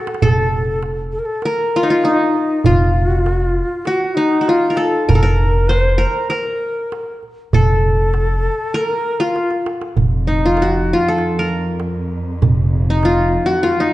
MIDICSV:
0, 0, Header, 1, 6, 480
1, 0, Start_track
1, 0, Tempo, 609756
1, 170, Time_signature, 4, 2, 24, 8
1, 10969, End_track
2, 0, Start_track
2, 0, Title_t, "Ney"
2, 0, Program_c, 0, 77
2, 157, Note_on_c, 0, 69, 79
2, 637, Note_off_c, 0, 69, 0
2, 885, Note_on_c, 0, 69, 72
2, 938, Note_on_c, 0, 70, 63
2, 949, Note_off_c, 0, 69, 0
2, 988, Note_on_c, 0, 69, 78
2, 1000, Note_off_c, 0, 70, 0
2, 1122, Note_on_c, 0, 70, 76
2, 1134, Note_off_c, 0, 69, 0
2, 1466, Note_off_c, 0, 70, 0
2, 1470, Note_on_c, 0, 65, 67
2, 1600, Note_on_c, 0, 62, 73
2, 1612, Note_off_c, 0, 65, 0
2, 1694, Note_off_c, 0, 62, 0
2, 1694, Note_on_c, 0, 63, 73
2, 2089, Note_on_c, 0, 65, 77
2, 2101, Note_off_c, 0, 63, 0
2, 2428, Note_off_c, 0, 65, 0
2, 2428, Note_on_c, 0, 66, 77
2, 2522, Note_off_c, 0, 66, 0
2, 2522, Note_on_c, 0, 65, 77
2, 3033, Note_on_c, 0, 66, 75
2, 3045, Note_off_c, 0, 65, 0
2, 3265, Note_on_c, 0, 63, 68
2, 3276, Note_off_c, 0, 66, 0
2, 3508, Note_on_c, 0, 66, 68
2, 3520, Note_off_c, 0, 63, 0
2, 3538, Note_on_c, 0, 65, 74
2, 3546, Note_off_c, 0, 66, 0
2, 3750, Note_on_c, 0, 69, 74
2, 3762, Note_off_c, 0, 65, 0
2, 3993, Note_off_c, 0, 69, 0
2, 3998, Note_on_c, 0, 70, 76
2, 4105, Note_off_c, 0, 70, 0
2, 4113, Note_on_c, 0, 72, 66
2, 4139, Note_on_c, 0, 70, 72
2, 4147, Note_off_c, 0, 72, 0
2, 4475, Note_on_c, 0, 72, 81
2, 4487, Note_off_c, 0, 70, 0
2, 4747, Note_off_c, 0, 72, 0
2, 4960, Note_on_c, 0, 72, 68
2, 4991, Note_on_c, 0, 70, 74
2, 4998, Note_off_c, 0, 72, 0
2, 5652, Note_off_c, 0, 70, 0
2, 5934, Note_on_c, 0, 69, 80
2, 6883, Note_off_c, 0, 69, 0
2, 6883, Note_on_c, 0, 69, 85
2, 6978, Note_off_c, 0, 69, 0
2, 6978, Note_on_c, 0, 70, 85
2, 7245, Note_on_c, 0, 66, 63
2, 7257, Note_off_c, 0, 70, 0
2, 7277, Note_on_c, 0, 65, 69
2, 7284, Note_off_c, 0, 66, 0
2, 7608, Note_off_c, 0, 65, 0
2, 10969, End_track
3, 0, Start_track
3, 0, Title_t, "Qanun"
3, 0, Program_c, 1, 107
3, 0, Note_on_c, 1, 66, 62
3, 0, Note_on_c, 1, 69, 81
3, 173, Note_off_c, 1, 69, 0
3, 176, Note_on_c, 1, 69, 88
3, 654, Note_off_c, 1, 66, 0
3, 1145, Note_on_c, 1, 70, 82
3, 1192, Note_off_c, 1, 69, 0
3, 1386, Note_on_c, 1, 65, 81
3, 1441, Note_on_c, 1, 63, 68
3, 1494, Note_off_c, 1, 65, 0
3, 1497, Note_on_c, 1, 65, 78
3, 1607, Note_off_c, 1, 63, 0
3, 1611, Note_on_c, 1, 63, 81
3, 2035, Note_off_c, 1, 70, 0
3, 2088, Note_off_c, 1, 65, 0
3, 2092, Note_on_c, 1, 65, 87
3, 2746, Note_off_c, 1, 63, 0
3, 3047, Note_on_c, 1, 66, 78
3, 3095, Note_off_c, 1, 65, 0
3, 3282, Note_on_c, 1, 63, 78
3, 3468, Note_off_c, 1, 66, 0
3, 3472, Note_on_c, 1, 66, 56
3, 3533, Note_on_c, 1, 65, 79
3, 3580, Note_off_c, 1, 66, 0
3, 3700, Note_on_c, 1, 70, 61
3, 3754, Note_on_c, 1, 69, 81
3, 3801, Note_off_c, 1, 70, 0
3, 4004, Note_on_c, 1, 70, 90
3, 4051, Note_off_c, 1, 69, 0
3, 4054, Note_on_c, 1, 69, 73
3, 4102, Note_off_c, 1, 70, 0
3, 4114, Note_on_c, 1, 70, 89
3, 4161, Note_off_c, 1, 69, 0
3, 4417, Note_off_c, 1, 63, 0
3, 4480, Note_on_c, 1, 72, 84
3, 4592, Note_off_c, 1, 65, 0
3, 4704, Note_off_c, 1, 70, 0
3, 4707, Note_on_c, 1, 70, 83
3, 4954, Note_off_c, 1, 70, 0
3, 4957, Note_on_c, 1, 70, 75
3, 5311, Note_off_c, 1, 72, 0
3, 5848, Note_off_c, 1, 70, 0
3, 5937, Note_on_c, 1, 69, 82
3, 6882, Note_on_c, 1, 70, 89
3, 6922, Note_off_c, 1, 69, 0
3, 7242, Note_on_c, 1, 65, 72
3, 7772, Note_off_c, 1, 70, 0
3, 8088, Note_on_c, 1, 63, 60
3, 8227, Note_off_c, 1, 65, 0
3, 8230, Note_on_c, 1, 65, 69
3, 8360, Note_on_c, 1, 66, 74
3, 8407, Note_off_c, 1, 65, 0
3, 8606, Note_on_c, 1, 65, 73
3, 8654, Note_off_c, 1, 66, 0
3, 8725, Note_on_c, 1, 69, 78
3, 8966, Note_on_c, 1, 70, 74
3, 9013, Note_off_c, 1, 69, 0
3, 9223, Note_off_c, 1, 63, 0
3, 9665, Note_off_c, 1, 65, 0
3, 9857, Note_off_c, 1, 70, 0
3, 10155, Note_on_c, 1, 63, 72
3, 10272, Note_on_c, 1, 65, 79
3, 10595, Note_on_c, 1, 66, 88
3, 10642, Note_off_c, 1, 65, 0
3, 10730, Note_on_c, 1, 65, 83
3, 10777, Note_off_c, 1, 66, 0
3, 10861, Note_off_c, 1, 63, 0
3, 10864, Note_on_c, 1, 63, 75
3, 10969, Note_off_c, 1, 63, 0
3, 10969, Note_off_c, 1, 65, 0
3, 10969, End_track
4, 0, Start_track
4, 0, Title_t, "Cello section"
4, 0, Program_c, 2, 48
4, 7839, Note_on_c, 2, 41, 61
4, 10969, Note_off_c, 2, 41, 0
4, 10969, End_track
5, 0, Start_track
5, 0, Title_t, "Upright bass"
5, 0, Program_c, 3, 32
5, 183, Note_on_c, 3, 29, 83
5, 910, Note_off_c, 3, 29, 0
5, 2096, Note_on_c, 3, 29, 88
5, 2826, Note_off_c, 3, 29, 0
5, 4009, Note_on_c, 3, 29, 93
5, 4742, Note_off_c, 3, 29, 0
5, 5929, Note_on_c, 3, 29, 85
5, 6663, Note_off_c, 3, 29, 0
5, 7846, Note_on_c, 3, 29, 79
5, 8583, Note_off_c, 3, 29, 0
5, 9776, Note_on_c, 3, 29, 85
5, 10509, Note_off_c, 3, 29, 0
5, 10969, End_track
6, 0, Start_track
6, 0, Title_t, "Darbuka"
6, 57, Note_on_c, 9, 63, 84
6, 114, Note_on_c, 9, 62, 85
6, 135, Note_off_c, 9, 63, 0
6, 174, Note_on_c, 9, 64, 91
6, 192, Note_off_c, 9, 62, 0
6, 253, Note_off_c, 9, 64, 0
6, 291, Note_on_c, 9, 62, 23
6, 369, Note_off_c, 9, 62, 0
6, 650, Note_on_c, 9, 63, 63
6, 728, Note_off_c, 9, 63, 0
6, 888, Note_on_c, 9, 62, 24
6, 966, Note_off_c, 9, 62, 0
6, 1119, Note_on_c, 9, 63, 63
6, 1197, Note_off_c, 9, 63, 0
6, 1243, Note_on_c, 9, 62, 26
6, 1321, Note_off_c, 9, 62, 0
6, 1604, Note_on_c, 9, 63, 66
6, 1683, Note_off_c, 9, 63, 0
6, 1849, Note_on_c, 9, 62, 25
6, 1927, Note_off_c, 9, 62, 0
6, 2080, Note_on_c, 9, 64, 77
6, 2159, Note_off_c, 9, 64, 0
6, 2203, Note_on_c, 9, 62, 24
6, 2282, Note_off_c, 9, 62, 0
6, 2568, Note_on_c, 9, 63, 68
6, 2647, Note_off_c, 9, 63, 0
6, 2798, Note_on_c, 9, 62, 24
6, 2877, Note_off_c, 9, 62, 0
6, 3033, Note_on_c, 9, 63, 64
6, 3112, Note_off_c, 9, 63, 0
6, 3159, Note_on_c, 9, 62, 26
6, 3238, Note_off_c, 9, 62, 0
6, 3526, Note_on_c, 9, 63, 67
6, 3605, Note_off_c, 9, 63, 0
6, 3773, Note_on_c, 9, 62, 26
6, 3852, Note_off_c, 9, 62, 0
6, 4010, Note_on_c, 9, 64, 76
6, 4089, Note_off_c, 9, 64, 0
6, 4135, Note_on_c, 9, 62, 25
6, 4214, Note_off_c, 9, 62, 0
6, 4491, Note_on_c, 9, 63, 70
6, 4570, Note_off_c, 9, 63, 0
6, 4727, Note_on_c, 9, 62, 26
6, 4805, Note_off_c, 9, 62, 0
6, 4968, Note_on_c, 9, 63, 63
6, 5046, Note_off_c, 9, 63, 0
6, 5083, Note_on_c, 9, 62, 26
6, 5162, Note_off_c, 9, 62, 0
6, 5449, Note_on_c, 9, 63, 67
6, 5527, Note_off_c, 9, 63, 0
6, 5688, Note_on_c, 9, 62, 26
6, 5767, Note_off_c, 9, 62, 0
6, 5928, Note_on_c, 9, 64, 91
6, 6007, Note_off_c, 9, 64, 0
6, 6049, Note_on_c, 9, 62, 24
6, 6127, Note_off_c, 9, 62, 0
6, 6170, Note_on_c, 9, 62, 25
6, 6248, Note_off_c, 9, 62, 0
6, 6289, Note_on_c, 9, 62, 27
6, 6368, Note_off_c, 9, 62, 0
6, 6405, Note_on_c, 9, 63, 69
6, 6484, Note_off_c, 9, 63, 0
6, 6643, Note_on_c, 9, 62, 24
6, 6722, Note_off_c, 9, 62, 0
6, 6889, Note_on_c, 9, 63, 66
6, 6968, Note_off_c, 9, 63, 0
6, 7006, Note_on_c, 9, 62, 25
6, 7084, Note_off_c, 9, 62, 0
6, 7367, Note_on_c, 9, 63, 54
6, 7446, Note_off_c, 9, 63, 0
6, 7484, Note_on_c, 9, 62, 62
6, 7562, Note_off_c, 9, 62, 0
6, 7608, Note_on_c, 9, 63, 74
6, 7686, Note_off_c, 9, 63, 0
6, 7727, Note_on_c, 9, 62, 84
6, 7805, Note_off_c, 9, 62, 0
6, 7844, Note_on_c, 9, 64, 66
6, 7923, Note_off_c, 9, 64, 0
6, 7961, Note_on_c, 9, 62, 22
6, 8040, Note_off_c, 9, 62, 0
6, 8081, Note_on_c, 9, 62, 21
6, 8160, Note_off_c, 9, 62, 0
6, 8321, Note_on_c, 9, 63, 68
6, 8400, Note_off_c, 9, 63, 0
6, 8571, Note_on_c, 9, 62, 23
6, 8650, Note_off_c, 9, 62, 0
6, 8683, Note_on_c, 9, 62, 23
6, 8762, Note_off_c, 9, 62, 0
6, 8803, Note_on_c, 9, 63, 59
6, 8882, Note_off_c, 9, 63, 0
6, 9286, Note_on_c, 9, 63, 60
6, 9365, Note_off_c, 9, 63, 0
6, 9416, Note_on_c, 9, 62, 21
6, 9494, Note_off_c, 9, 62, 0
6, 9540, Note_on_c, 9, 62, 23
6, 9619, Note_off_c, 9, 62, 0
6, 9779, Note_on_c, 9, 64, 83
6, 9857, Note_off_c, 9, 64, 0
6, 9903, Note_on_c, 9, 62, 22
6, 9981, Note_off_c, 9, 62, 0
6, 10026, Note_on_c, 9, 62, 21
6, 10104, Note_off_c, 9, 62, 0
6, 10256, Note_on_c, 9, 63, 62
6, 10335, Note_off_c, 9, 63, 0
6, 10500, Note_on_c, 9, 62, 22
6, 10579, Note_off_c, 9, 62, 0
6, 10615, Note_on_c, 9, 62, 22
6, 10693, Note_off_c, 9, 62, 0
6, 10735, Note_on_c, 9, 63, 60
6, 10814, Note_off_c, 9, 63, 0
6, 10969, End_track
0, 0, End_of_file